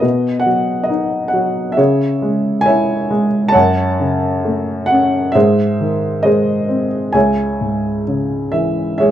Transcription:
Already playing: D#5
0.01 B2 F#4 B4
0.40 F#5
0.46 F#3
0.83 D#5
0.90 D#4
1.28 F#5
1.33 F#3
1.72 E5
1.77 C#3 G#4 C#5
2.22 G#3
2.61 G#5
2.66 E4 C#5 E5
3.10 G#3
3.48 C#5 A5
3.53 F#2 F#5
4.00 C#3
4.44 A3
4.86 F#5
4.91 C#4
5.32 G#2 G#4 C5 E5
5.80 D#3
6.23 G#3 G#4 C5 D#5
6.69 C4
7.13 C#2 C#5 E5 G#5
7.61 G#2
8.07 C#3
8.52 E3 E5
8.98 G#3 G#4 C#5 E5

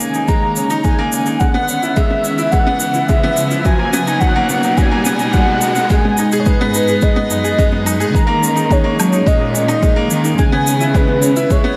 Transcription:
Already playing: D#3 G#3 A#3 C#4 D#4 G#4 D#5 G#5, riser
0.00 C#4, shaker
0.14 D#4, shaker
0.28 G#3 A#5, kick, shaker
0.42 A#3
0.56 C#4, shaker
0.70 D#4, shaker
0.84 G#3 G#5, kick, shaker
0.99 A#3
1.12 C#4, shaker
1.26 D#4, shaker
1.40 C#3 G#3 F#5, kick, shaker
1.54 B3
1.68 C#4, shaker
1.82 E4, shaker
1.96 G#3 E5, kick, shaker
2.06 B4
2.10 B3
2.16 E5
2.24 C#4, shaker
2.38 E4, shaker
2.51 G#3 F#5, kick, shaker
2.67 B3
2.80 C#4, shaker
2.94 E4, shaker
3.08 G#3 E5, kick, shaker
3.23 B3
3.37 C#4, shaker
3.51 E4, shaker
3.65 B2 F#3 G#5, kick, shaker
3.79 A#3
3.93 B3, shaker
4.07 D#4, shaker
4.20 F#3 F#5, kick, shaker
4.36 A#3
4.49 B3, shaker
4.63 D#4 A#4 D#5, shaker
4.77 F#3 G#5, kick, shaker
4.92 A#3
5.05 B3, shaker
5.19 D#4, shaker
5.33 F#3 F#5, kick, shaker
5.48 F#3
5.61 F#4, shaker
5.75 B3, shaker
5.90 G#2 G#3 G#5, kick, shaker
6.04 B3
6.17 D#4 G#4 B4, shaker
6.32 G#4, shaker
6.40 C#5
6.46 G#3 B4, kick, shaker
6.61 B3
6.74 D#4, shaker
6.88 G#4, shaker
7.02 G#3 D#5, kick, shaker
7.16 B3
7.30 F#2 D#4 D#5, shaker
7.44 G#4, shaker
7.58 F#2 G#3, kick, shaker
7.72 B3
7.86 D#4, shaker
8.00 G#4, shaker
8.14 D#3 G#3 A#5, kick, shaker
8.27 A#3
8.42 C#4, shaker
8.49 C#4
8.56 D#4, shaker
8.70 G#3 C#5, kick, shaker
8.84 A#3
8.99 F#3 C#4, low woodblock, shaker
9.13 D#4, shaker
9.26 A#2 G#3 D#5, kick, shaker
9.41 A#3
9.54 C#4 D#5, shaker
9.68 D#4, shaker
9.82 G#3, kick, shaker
9.96 A#3
10.10 D#3 C#4, shaker
10.24 D#4, shaker
10.38 C#3 G#3 G#5, kick, shaker
10.52 B3
10.66 C#4, shaker
10.80 E4, shaker
10.86 E5
10.94 G#3 B4, kick, shaker
11.08 B3
11.22 C#4, shaker
11.33 E4 B4, shaker
11.50 G#3 C#5, kick, shaker
11.64 B3

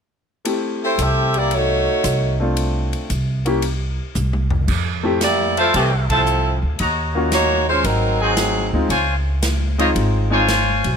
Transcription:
0.45 A3 C4 E4 G4, ride
0.84 A3 E4 G4 C5
0.98 C2 C4 G4 A4 E5, hi-hat pedal, ride
1.34 A#3 E4 G4 D5, ride
1.51 A3 D#4 F#4 C#5, ride
2.04 C2, cross-stick, hi-hat pedal, ride
2.40 A3 C4 D4 F4
2.57 ride
2.93 ride
3.10 C2, hi-hat pedal, ride
3.46 A#3 C#4 E4 G4, ride
3.62 ride
4.15 C2, hi-hat pedal, mid tom
4.33 mid tom
4.50 floor tom
4.68 F2, kick, crash
5.03 A3 C4 E4 G4
5.21 A#3 E4 G4 D5, snare, hi-hat pedal, ride
5.57 A3 E4 F4 C5 E5 A5, ride
5.74 C2 E3 A3 C4 G4, ride
6.09 F3 C4 E4 F4 A4 C5 E5 A5, kick, ride
6.26 hi-hat pedal
6.63 D2
6.79 D#2 F#4 C#5 D#5 A#5, ride
7.15 A#3 C#4 F4 F#4
7.32 A#3 D#4 F#4 C#5, snare, hi-hat pedal, ride
7.69 G#3 C#4 F4 C5
7.84 G#1 F#3 C4 D#4 A#4, ride
8.21 F#3 C4 D#4 F#4 G#4 C5 D#5 G#5
8.37 snare, hi-hat pedal, ride
8.73 D2 G#3 C4 D#4 F4
8.89 C#2 F4 C5 C#5 G#5, ride
9.43 snare, hi-hat pedal, ride
9.78 G#3 C4 D#4 F4 C5 C#5 D#5, ride
9.95 G#1, ride
10.30 G#3 C4 D#4 F4 C5 C#5 G#5
10.48 snare, hi-hat pedal, ride
10.84 B1, ride

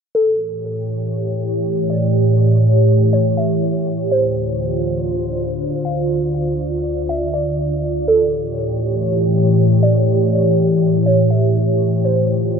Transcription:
0.15 A2 E3 G4 A4 C#5
1.90 D5
3.13 C#5
3.37 E5
4.11 D2 D3 F4 C5
5.85 F5
6.10 D5
7.09 E5
7.34 D5
8.08 A2 E3 G4 A4 C#5
9.83 D5
11.06 C#5
11.30 E5
12.05 D2 D3 F4 C5

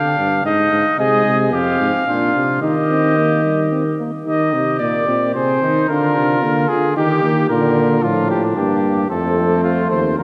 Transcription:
Already playing: D3 D4 F5
0.18 G2
0.44 G#2 D#4 D#5
0.72 G#2
0.98 C3 G#3 G#4 D#5
1.25 C3
1.52 F2 C4 G4 F5
1.80 G#2
2.07 A#2 D4 F4
2.35 C3
2.61 D#3 D#4 G4 D#5
2.90 C4
3.17 A#3
3.44 G3
3.72 C4
3.99 A#3
4.25 D#3 D#4 G4 D#5
4.53 C3 G4
4.79 A#2 A#3 D5
5.08 A#2 C4
5.34 C3 C4 G#4 C5
5.61 D#3 D#4
5.88 D3 D4 F4 A#4
6.16 C3
6.42 D3 A#3
6.68 D3 F4 G#4
6.96 D#3 D#4 G4
7.23 D#3 A#3
7.49 A#2 D3 F4 A#4
8.03 A2 F3 D4 F4
8.31 G4
8.57 G2 A#3 G4
9.10 F2 A3 C4 A4
9.64 F4
9.90 D#2 C5
10.17 D2 F3 F4 A#4

